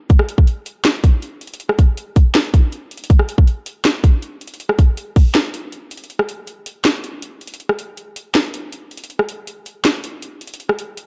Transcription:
0.10 kick, closed hi-hat
0.19 cross-stick
0.29 closed hi-hat
0.38 kick
0.47 closed hi-hat
0.66 closed hi-hat
0.85 cross-stick, snare, closed hi-hat
1.04 kick, closed hi-hat
1.22 closed hi-hat
1.41 closed hi-hat
1.47 closed hi-hat
1.54 closed hi-hat
1.60 closed hi-hat
1.69 cross-stick
1.79 kick, closed hi-hat
1.97 closed hi-hat
2.16 kick, closed hi-hat
2.35 cross-stick, snare, closed hi-hat
2.54 kick, closed hi-hat
2.72 closed hi-hat
2.91 closed hi-hat
2.97 closed hi-hat
3.04 closed hi-hat
3.10 kick, closed hi-hat
3.19 cross-stick
3.29 closed hi-hat
3.38 kick
3.47 closed hi-hat
3.66 closed hi-hat
3.85 cross-stick, snare, closed hi-hat
4.04 kick, closed hi-hat
4.22 closed hi-hat
4.41 closed hi-hat
4.47 closed hi-hat
4.54 closed hi-hat
4.60 closed hi-hat
4.69 cross-stick
4.79 kick, closed hi-hat
4.97 closed hi-hat
5.16 kick, open hi-hat
5.35 cross-stick, snare, closed hi-hat
5.54 closed hi-hat
5.72 closed hi-hat
5.91 closed hi-hat
5.97 closed hi-hat
6.04 closed hi-hat
6.10 closed hi-hat
6.19 cross-stick
6.29 closed hi-hat
6.47 closed hi-hat
6.66 closed hi-hat
6.85 cross-stick, snare, closed hi-hat
7.04 closed hi-hat
7.22 closed hi-hat
7.41 closed hi-hat
7.47 closed hi-hat
7.54 closed hi-hat
7.60 closed hi-hat
7.69 cross-stick
7.79 closed hi-hat
7.97 closed hi-hat
8.16 closed hi-hat
8.35 cross-stick, snare, closed hi-hat
8.54 closed hi-hat
8.72 closed hi-hat
8.91 closed hi-hat
8.97 closed hi-hat
9.04 closed hi-hat
9.10 closed hi-hat
9.19 cross-stick
9.29 closed hi-hat
9.47 closed hi-hat
9.66 closed hi-hat
9.85 cross-stick, snare, closed hi-hat
10.04 closed hi-hat
10.22 closed hi-hat
10.41 closed hi-hat
10.47 closed hi-hat
10.54 closed hi-hat
10.60 closed hi-hat
10.69 cross-stick
10.79 closed hi-hat
10.97 closed hi-hat

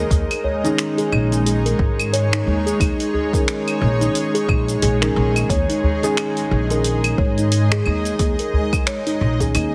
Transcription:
Already playing: G#3 D#4 A#4 D#5
0.11 D#2 G#4 C#5, kick, open hi-hat, shaker
0.31 open hi-hat, claves, shaker
0.44 C#5, udu
0.63 D#3 C#4 D#4 G#4, open hi-hat, shaker
0.78 finger snap, open hi-hat, shaker
0.98 G#4, open hi-hat, shaker
1.12 A#1 D#4, claves
1.30 D#3 C#4 G#4, open hi-hat, shaker
1.46 G#4, open hi-hat, shaker
1.66 A#4, open hi-hat, shaker
1.79 G#2, kick
2.00 open hi-hat, claves, shaker
2.13 C#5, open hi-hat, shaker
2.33 D#4, finger snap, open hi-hat, shaker
2.47 D#2
2.66 G#4, open hi-hat, shaker
2.80 D#2 D#4, kick, open hi-hat, claves, shaker
3.00 open hi-hat, shaker
3.14 G#4, udu
3.33 D#3 C#4 G#4 A#4, kick, open hi-hat, shaker
3.48 finger snap, open hi-hat, shaker
3.68 open hi-hat, claves, shaker
3.81 A#1 C#5
4.00 D#3 C#4 D#4 G#4, open hi-hat, shaker
4.15 open hi-hat, shaker
4.34 G#4, open hi-hat, shaker
4.48 A#1 D#4, kick, claves
4.68 open hi-hat, shaker
4.82 A#1 G#4, open hi-hat, shaker
5.00 D#3 C#4 A#4, finger snap, open hi-hat, shaker
5.04 G#4
5.16 A#1
5.36 open hi-hat, claves, shaker
5.50 D#2 C#5 D#5, kick, open hi-hat, shaker
5.70 D#4, open hi-hat, shaker
5.83 udu
6.02 D#3 C#4 G#4, open hi-hat, shaker
6.17 D#4, finger snap, open hi-hat, claves, shaker
6.37 open hi-hat, shaker
6.51 A#1 G#4
6.68 D#3 C#4 G#4 A#4, open hi-hat, shaker
6.84 open hi-hat, shaker
7.04 open hi-hat, claves, shaker
7.18 G#2 C#5, kick
7.38 D#4, open hi-hat, shaker
7.52 open hi-hat, shaker
7.72 G#4, finger snap, open hi-hat
7.86 D#2 D#4, claves
8.05 open hi-hat, shaker
8.19 D#2 G#4, kick, open hi-hat, shaker
8.39 A#4, open hi-hat, shaker
8.53 udu
8.73 kick, open hi-hat, claves, shaker
8.87 C#5, finger snap, open hi-hat, shaker
9.07 D#4, open hi-hat, shaker
9.21 A#1
9.40 D#3 C#4 G#4, kick, open hi-hat, shaker
9.55 D#2 D#4, open hi-hat, claves, shaker

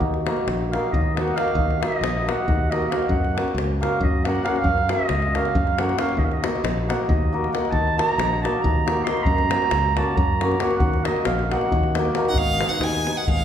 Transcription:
0.00 D#2, davul low
0.14 davul high
0.26 A#3 D#4 F#4 A#4, davul high
0.37 davul high
0.47 A#1, davul high
0.72 A#3 D#4 F#4 A#4 F5, davul high
0.92 D#2 D#5, davul low
1.16 A#3 D#4 F#4 A#4 F#5, davul high
1.28 davul high
1.36 A#3 D#4 F#4 A#4 F5, davul high
1.48 davul high
1.55 D#2, davul low
1.71 davul high
1.80 A#3 D#4 F#4 A#4 D#5, davul high
1.92 davul high
2.01 A#1, davul high
2.26 A#3 D#4 F#4 A#4 F#5, davul high
2.48 D#2, davul low
2.70 A#3 D#4 F#4 A#4 D#5, davul high
2.82 davul high
2.90 A#3 D#4 F#4 A#4 F5, davul high
3.02 davul high
3.09 F#2 F#5, davul low
3.25 davul high
3.35 A#3 C#4 F#4 A#4, davul high
3.48 davul high
3.55 C#2, davul high
3.80 A#3 C#4 F#4 A#4 F5, davul high
4.01 F#2 D#5, davul low
4.24 A#3 C#4 F#4 A#4 F#5, davul high
4.35 davul high
4.44 A#3 C#4 F#4 A#4 F5, davul high
4.49 F#5
4.56 F5, davul high
4.64 F#2, davul low
4.78 davul high
4.88 A#3 C#4 F#4 A#4 D#5, davul high
4.99 davul high
5.09 C#2, davul high
5.22 davul high
5.34 A#3 C#4 F#4 A#4 F5, davul high
5.45 davul high
5.55 F#2, davul low
5.67 davul high
5.78 A#3 C#4 F#4 A#4 F#5, davul high
5.89 davul high
5.98 A#3 C#4 F#4 A#4 F5, davul high
6.09 davul high
6.17 D#2 D#5, davul low
6.24 F5
6.32 D#5, davul high
6.42 A#3 D#4 F#4 A#4, davul high
6.56 davul high
6.64 A#1, davul high
6.88 A#3 D#4 F#4 A#4 F#5, davul high
7.08 D#2 D#5, davul low
7.33 A#3 D#4 F#4 A#4
7.44 davul high
7.52 A#3 D#4 F#4 A#4 F#5, davul high
7.65 davul high
7.71 D#2 A5, davul low
7.87 davul high
7.97 A#3 D#4 F#4 A#4 A#5, davul high
8.09 davul high
8.18 A#1, davul high
8.42 A#3 D#4 F#4 A#4 A5, davul high
8.61 D#2 A#5, davul low
8.86 A#3 D#4 F#4 A#4, davul high
8.97 davul high
9.04 A#3 D#4 F#4 A#4 C6, davul high
9.17 davul high
9.23 F#2 A#5, davul low
9.38 davul high
9.51 A#3 C#4 F#4 A#4, davul high
9.62 davul high
9.71 C#2, davul high
9.96 A#3 C#4 F#4 A#4 A5, davul high
10.16 F#2 A#5, davul low
10.41 A#3 C#4 F#4 A#4, davul high
10.52 davul high
10.60 A#3 C#4 F#4 A#4 F#5, davul high
10.71 davul high
10.78 D#2 F#5, davul low
10.94 davul high
11.04 A#3 D#4 F#4 A#4 D#5, davul high
11.16 davul high
11.25 A#1 F5, davul high
11.39 davul high
11.51 A#3 D#4 F#4 A#4 F#5, davul high
11.61 davul high
11.72 D#2, davul low
11.83 davul high
11.95 A#3 D#4 F#4 A#4, davul high
12.05 davul high
12.15 A#3 D#4 F#4 A#4, davul high
12.25 D#4 F#5, davul high
12.34 G#1 B3 F5, davul low
12.60 B3 D#4 G#4 B4, davul high
12.69 D#4 F#5, davul high
12.80 D#2 D#4 G#5, davul high
13.07 B3 D#4 G#4 B4, davul high
13.15 D#4 F#5
13.28 G#1 B3 F5, davul low
13.39 davul high

